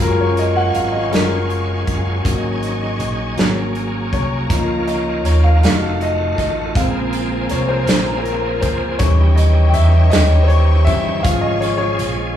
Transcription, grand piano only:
0.00 1.09 F#3 medium
0.00 1.09 G#3 soft
0.00 1.10 C#4 soft
0.00 1.10 F4 medium
0.00 0.21 A#4 medium
0.21 0.39 C#5 medium
0.39 0.56 D#5 medium
0.56 0.76 F#5 medium
0.75 0.95 F5 medium
0.92 1.13 D#5 medium
1.10 1.45 F#3 soft
1.10 1.45 G#3 soft
1.10 1.46 C#4 soft
1.10 1.46 F4 medium
1.10 2.21 A#4 medium
2.24 3.33 F#3 medium
2.24 3.34 A#3 soft
2.24 3.34 C#4 medium
3.36 4.46 F#3 soft
3.36 4.46 A#3 soft
3.36 4.47 C#4 medium
4.14 4.91 C#5 medium
4.49 5.58 F3 medium
4.49 5.59 A#3 soft
4.49 5.59 D#4 medium
4.88 5.27 D#5 medium
5.26 5.45 C#5 medium
5.44 5.63 F5 medium
5.63 6.72 F#3 soft
5.63 6.72 A3 soft
5.63 6.73 D#4 medium
5.63 6.02 F5 medium
6.03 6.37 D#5 medium
6.39 6.77 D#5 medium
6.76 7.26 C#3 medium
6.76 7.26 G#3 soft
6.76 7.26 C4 medium
6.76 6.85 F5 medium
7.51 7.70 C#5 medium
7.69 8.16 C5 medium
8.18 8.25 C5 medium
8.23 8.63 A#4 medium
8.61 9.01 C5 medium
8.99 10.85 E3 medium
8.99 10.85 G3 soft
8.99 10.86 C#4 medium
8.99 9.38 C#5 medium
9.36 9.69 D#5 medium
9.69 9.76 G5 medium
9.74 10.09 E5 medium
10.10 10.17 D#5 loud
10.43 10.50 C5 medium
10.48 10.88 C#5 medium
10.85 11.21 E3 medium
10.85 11.21 G3 soft
10.85 11.21 C#4 medium
10.85 11.25 E5 loud
11.23 11.75 F3 medium
11.23 11.75 G#3 medium
11.23 11.75 C#4 medium
11.23 11.44 F5 loud
11.41 11.62 D#5 medium
11.61 11.76 C#5 medium
11.78 12.37 C#5 medium

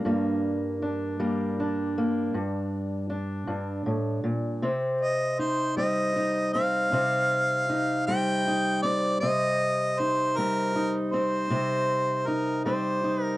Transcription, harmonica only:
5.01 5.41 D#5 medium
5.39 5.76 C5 medium
5.77 6.50 D#5 medium
6.53 8.02 F5 medium
8.07 8.79 G5 loud
8.82 9.18 D5 medium
9.20 10.01 D#5 medium
10.00 10.39 C5 medium
10.37 10.95 A#4 medium
11.12 12.29 C5 medium
12.27 12.64 A#4 medium
12.65 13.24 C5 medium
13.24 13.37 A#4 medium

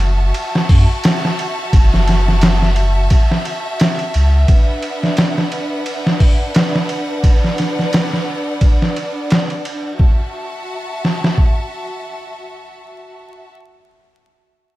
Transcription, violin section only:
0.00 4.44 F#4 medium
0.00 7.20 E5 medium
0.00 4.45 A5 medium
4.48 9.95 D4 medium
4.48 9.96 B4 medium
4.48 9.96 F#5 medium
7.24 9.97 D5 medium
9.97 13.51 F#4 medium
9.97 13.50 E5 medium
9.97 13.51 A5 medium

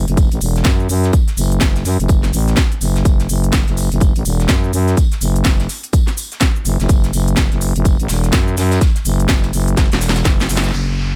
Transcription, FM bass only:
0.08 0.29 F#1 medium
0.32 0.40 A1 medium
0.41 0.64 E1 loud
0.65 0.88 F#2 loud
0.89 1.12 F#2 medium
1.37 1.60 F#1 loud
1.85 1.97 F#2 loud
2.00 2.32 F#1 medium
2.33 2.56 A1 loud
2.81 3.04 F#1 loud
3.29 3.65 F#1 medium
3.68 3.89 F#1 loud
3.92 4.13 F#1 loud
4.16 4.24 A1 medium
4.25 4.48 E1 loud
4.49 4.72 F#2 loud
4.73 4.96 F#2 loud
5.21 5.44 F#1 loud
6.65 6.77 F#1 loud
6.80 6.88 F#1 medium
7.13 7.49 F#1 loud
7.52 7.73 F#1 loud
7.76 7.97 F#1 loud
8.00 8.08 A1 medium
8.09 8.32 E1 loud
8.33 8.56 F#2 loud
8.57 8.80 F#2 loud
9.05 9.28 F#1 loud
9.53 9.76 F#1 loud
9.92 10.24 E1 loud
10.49 10.72 F#1 loud
10.73 11.15 F#1 medium

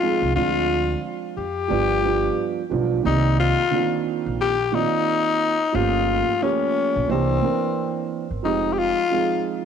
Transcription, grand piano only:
0.00 0.28 F3 medium
0.00 0.29 G#3 medium
0.00 0.29 C4 medium
0.00 0.30 D#4 medium
0.00 0.30 G#4 medium
0.34 1.40 F3 medium
0.34 1.41 G#3 medium
0.34 1.41 C4 medium
0.34 1.41 D4 medium
0.34 1.42 F4 medium
1.68 1.97 F3 medium
1.68 1.98 G3 medium
1.68 1.98 B3 medium
1.68 1.99 D4 medium
1.68 1.99 F4 medium
2.02 2.58 F3 medium
2.02 2.59 G3 medium
2.02 2.59 B3 medium
2.02 2.59 D4 medium
2.02 2.60 F4 medium
2.69 2.98 F3 medium
2.69 2.98 G3 medium
2.69 2.99 B3 medium
2.69 2.99 D4 medium
2.69 3.00 F4 medium
3.03 3.59 D#3 medium
3.03 3.60 A#3 medium
3.03 3.60 C4 medium
3.03 3.61 G4 medium
3.03 3.61 D5 medium
3.71 3.79 D3 medium
3.71 4.53 A#3 medium
3.71 4.53 C4 medium
3.71 4.53 D4 medium
3.71 4.54 F4 medium
3.77 4.56 D#3 medium
4.72 5.53 D#3 medium
4.72 5.54 A#3 medium
4.72 5.54 C4 medium
4.72 5.55 F4 medium
4.72 5.55 D5 medium
5.72 6.29 F3 medium
5.72 6.29 A3 medium
5.72 6.30 A#3 medium
5.72 6.30 C#4 medium
5.72 6.31 G4 medium
6.41 7.09 F3 medium
6.41 7.09 A3 medium
6.41 7.07 A#3 medium
6.41 7.10 C#4 medium
6.41 7.09 G4 medium
7.08 7.37 E3 medium
7.08 7.37 A#3 medium
7.08 7.38 C4 medium
7.08 7.38 D4 medium
7.08 7.38 G4 medium
7.41 8.23 E3 medium
7.41 8.23 A#3 medium
7.41 8.24 C4 medium
7.41 8.24 D4 medium
7.41 8.24 A#4 medium
8.43 8.99 F3 medium
8.43 8.99 G#3 medium
8.43 9.00 C4 medium
8.43 9.00 D#4 medium
8.43 9.00 G4 medium
9.10 9.65 F3 medium
9.10 9.65 G#3 medium
9.10 9.65 C4 medium
9.10 9.65 D#4 medium
9.10 9.65 G#4 medium

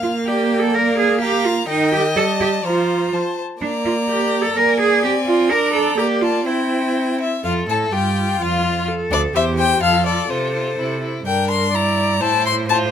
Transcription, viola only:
0.00 1.64 A#3 soft
1.68 2.17 D#3 medium
2.16 2.64 G3 medium
2.65 3.12 F3 soft
3.14 3.22 F3 soft
3.61 4.52 A#3 soft
4.56 5.05 A#3 medium
5.04 5.52 C4 soft
5.50 5.97 D4 medium
5.98 6.45 A#3 soft
6.46 7.22 C4 soft
7.44 7.94 A4 soft
7.92 8.89 F4 soft
8.88 9.36 A4 medium
9.34 9.83 G4 soft
9.81 10.28 F4 soft
10.28 11.00 A4 soft
11.25 11.70 A#4 soft
11.73 12.22 D5 medium
12.21 12.67 C5 soft
12.68 12.91 C5 medium

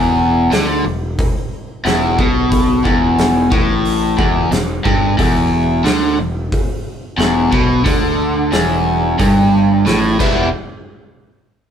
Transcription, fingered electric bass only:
0.00 0.48 E1 medium
0.51 0.83 D2 medium
0.85 1.16 E1 medium
1.85 2.16 E1 medium
2.18 2.81 B1 medium
2.85 3.48 E1 medium
3.52 4.15 A1 medium
4.18 4.50 E1 medium
4.51 4.83 E1 medium
4.85 5.16 G1 medium
5.19 5.82 E1 medium
5.84 6.16 D2 medium
6.18 6.50 E1 medium
7.18 7.50 E1 loud
7.52 7.83 B1 medium
7.86 8.49 D2 loud
8.52 9.15 E1 medium
9.19 9.83 G1 medium
9.86 10.17 A1 medium
10.20 10.51 E1 medium

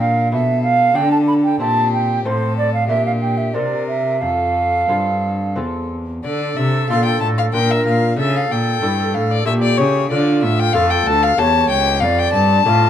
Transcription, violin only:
0.00 0.32 A#4 medium
0.34 1.58 A4 medium
1.61 2.27 G4 medium
2.26 2.88 A4 medium
2.88 3.56 G4 medium
3.54 4.22 A#4 medium
4.23 5.88 A4 medium
6.24 6.58 D5 medium
6.57 6.89 E5 loud
6.90 7.05 F5 loud
7.05 7.20 G5 medium
7.20 7.27 A5 loud
7.38 7.44 F5 loud
7.53 7.72 G5 loud
7.71 7.85 E5 loud
7.86 8.18 F5 loud
8.19 8.38 E5 loud
8.36 8.53 F5 loud
8.51 9.16 G5 loud
9.14 9.33 F5 medium
9.31 9.46 D5 loud
9.46 9.53 E5 loud
9.62 9.79 D5 loud
9.78 10.10 C#5 loud
10.11 10.42 D5 loud
10.43 10.61 E5 loud
10.59 10.74 G5 loud
10.73 10.92 F5 loud
10.90 11.08 G5 loud
11.07 11.25 A5 loud
11.23 11.40 F5 loud
11.38 11.69 A5 loud
11.70 12.02 G5 loud
12.00 12.20 F5 loud
12.19 12.32 G5 loud
12.33 12.90 A5 loud

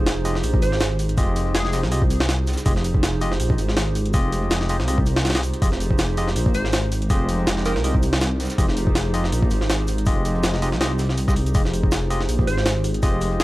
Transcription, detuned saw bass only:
0.00 0.42 F1 loud
0.44 0.60 A#1 loud
0.62 1.16 G#1 loud
1.18 1.53 F1 loud
1.55 1.85 F1 medium
1.84 2.56 C2 medium
2.66 3.39 F1 loud
3.40 3.57 A#1 loud
3.59 4.13 G#1 loud
4.14 4.50 F1 loud
4.51 4.81 F1 medium
4.80 5.52 C2 medium
5.62 6.35 F1 loud
6.36 6.53 A#1 loud
6.55 7.09 G#1 loud
7.10 7.46 F1 loud
7.47 7.77 F1 medium
7.76 8.48 C2 medium
8.58 9.31 F1 loud
9.32 9.49 A#1 loud
9.51 10.05 G#1 loud
10.07 10.42 F1 loud
10.44 10.74 F1 medium
10.73 11.36 C2 medium
11.36 11.53 C2 loud
11.55 12.27 F1 loud
12.29 12.46 A#1 loud
12.47 13.02 G#1 loud
13.03 13.39 F1 loud
13.40 13.44 F1 loud

